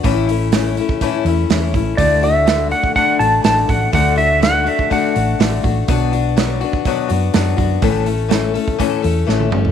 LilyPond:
<<
  \new Staff \with { instrumentName = "Electric slide guitar" } { \time 4/4 \key d \major \tempo 4 = 123 r1 | d''8 e''4 fis''8 fis''8 a''8 a''8 fis''8 | fis''8 e''8 fis''8 e''8 fis''4. r8 | r1 |
r1 | }
  \new Staff \with { instrumentName = "Steel-string acoustic guitar" } { \time 4/4 \key d \major <a, e a cis' e'>8 <a cis' e'>8 <e a cis' e'>8 <a cis' e'>8 <a, e a cis' e'>8 <a cis' e'>8 <e a cis' e'>8 <a cis' e'>8 | <d a d' fis'>8 <a d' fis'>8 <d a d' fis'>8 <a d' fis'>8 <d a d' fis'>8 <a d' fis'>8 <d a d' fis'>8 <a d' fis'>8 | <d a d' fis'>8 <a d' fis'>8 <d a d' fis'>8 <a d' fis'>8 <d a d' fis'>8 <a d' fis'>8 <d a d' fis'>8 <a d' fis'>8 | <b, fis b d' fis'>8 <b d' fis'>8 <fis b d' fis'>8 <b d' fis'>8 <b, fis b d' fis'>8 <b d' fis'>8 <fis b d' fis'>8 <b d' fis'>8 |
<a, e a cis' a'>8 <a cis' a'>8 <e a cis' a'>8 <a cis' a'>8 <a, e a cis' a'>8 <a cis' a'>8 <e a cis' a'>8 <a cis' a'>8 | }
  \new Staff \with { instrumentName = "Fingered electric bass" } { \clef bass \time 4/4 \key d \major a,,2 r8 e,8 e,8 a,,8 | d,2 r8 a,,8 a,,8 a,,8 | d,2 r8 a,,8 a,,8 a,,8 | b,,2 r8 fis,8 fis,8 fis,8 |
a,,2 r8 e,8 a,,8 g,,8 | }
  \new DrumStaff \with { instrumentName = "Drums" } \drummode { \time 4/4 <hho bd>8 hho8 <hho sn>8 hho16 bd16 <hho bd>8 hho8 <hho sn>8 <hho bd>8 | <hho bd>8 hho8 <hho sn>8 hho16 bd16 <hho bd>8 hho8 <hho sn>8 <hho bd>8 | <hho bd>8 hho8 <hho sn>8 hho16 bd16 <hho bd>8 hho8 <hho sn>8 <hho bd>8 | <hho bd>8 hho8 <hho sn>8 hho16 bd16 <hho bd>8 hho8 <hho sn>8 <hho bd>8 |
<hho bd>8 hho8 <hho sn>8 hho16 bd16 <hho bd>8 hho8 sn16 tommh16 toml16 tomfh16 | }
>>